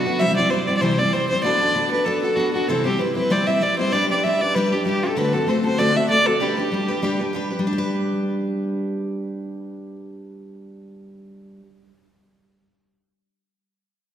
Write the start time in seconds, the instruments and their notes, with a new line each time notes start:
Already playing: fiddle F#4
0.06 steel-string acoustic guitar B3 D4 F#4 B4
0.19 steel-string acoustic guitar C3 E3 G3 C4 E4 C5, fiddle E5
0.37 steel-string acoustic guitar G3 C4 E4 C5, fiddle D5
0.50 steel-string acoustic guitar G3 C4 E4 C5, fiddle C5
0.67 steel-string acoustic guitar G3 C4 E4 C5, fiddle D5
0.77 fiddle D5
0.81 steel-string acoustic guitar C3 E3 G3 C4 E4 C5, fiddle C5
0.98 steel-string acoustic guitar G3 C4 E4 C5, fiddle D5
1.13 steel-string acoustic guitar G3 C4 E4 C5, fiddle C5
1.30 steel-string acoustic guitar G3 C4 E4 C5, fiddle C5
1.43 steel-string acoustic guitar B3 D4 F#4 A4, fiddle D5
1.60 steel-string acoustic guitar D4 F#4 A4
1.75 steel-string acoustic guitar B3 D4 F#4 A4
1.91 steel-string acoustic guitar D4 F#4 A4, fiddle B4
2.05 steel-string acoustic guitar B3 D4 F#4 A4, fiddle A4
2.22 steel-string acoustic guitar D4 F#4 A4, fiddle A4
2.36 steel-string acoustic guitar B3 D4 F#4 A4, fiddle F#4
2.53 steel-string acoustic guitar D4 F#4 A4, fiddle F#4
2.68 steel-string acoustic guitar C3 E3 G3 C4 E4 C5, fiddle A4
2.84 steel-string acoustic guitar G3 C4 E4 C5, fiddle G4
2.98 steel-string acoustic guitar G3 C4 E4 C5, fiddle B4
3.15 steel-string acoustic guitar G3 C4 E4 C5, fiddle B4
3.30 steel-string acoustic guitar C3 E3 G3 C4 E4 C5, fiddle D5
3.47 steel-string acoustic guitar G3 C4 E4 C5, fiddle E5
3.61 steel-string acoustic guitar G3 C4 E4 C5, fiddle D5
3.77 steel-string acoustic guitar G3 C4 E4 C5, fiddle C5
3.92 steel-string acoustic guitar G3 D4 G4 B4, fiddle D5
4.10 steel-string acoustic guitar D4 G4 B4, fiddle D5
4.24 steel-string acoustic guitar G3 D4 G4 B4, fiddle E5
4.41 steel-string acoustic guitar D4 G4 B4, fiddle D5
4.55 steel-string acoustic guitar G3 D4 G4 B4, fiddle B4
4.72 steel-string acoustic guitar D4 G4 B4, fiddle G4
4.85 steel-string acoustic guitar G3 D4 G4 B4, fiddle G4
5.03 steel-string acoustic guitar D4 G4 B4, fiddle A4
5.16 steel-string acoustic guitar D3 A3 C4 F#4 A4, fiddle B4
5.33 steel-string acoustic guitar C4 F#4 A4, fiddle A4
5.47 steel-string acoustic guitar A3 C4 F#4 A4, fiddle C5
5.64 steel-string acoustic guitar C4 F#4 A4, fiddle C5
5.78 steel-string acoustic guitar D3 A3 C4 F#4 A4, fiddle D5
5.95 steel-string acoustic guitar C4 F#4 A4, fiddle E5
6.09 steel-string acoustic guitar A3 C4 F#4 A4, fiddle D5
6.26 steel-string acoustic guitar C4 F#4 A4, fiddle A4
6.40 steel-string acoustic guitar G3 D4 G4 B4, fiddle G4
6.57 steel-string acoustic guitar D4 G4 B4
6.72 steel-string acoustic guitar G3 D4 G4 B4
6.88 steel-string acoustic guitar D4 G4 B4
7.02 steel-string acoustic guitar G3 D4 G4 B4
7.19 steel-string acoustic guitar D4 G4 B4
7.33 steel-string acoustic guitar G3 D4 G4 B4
7.50 steel-string acoustic guitar D4 G4 B4
7.59 steel-string acoustic guitar G3
7.67 steel-string acoustic guitar D4
7.73 steel-string acoustic guitar G4
7.78 steel-string acoustic guitar B4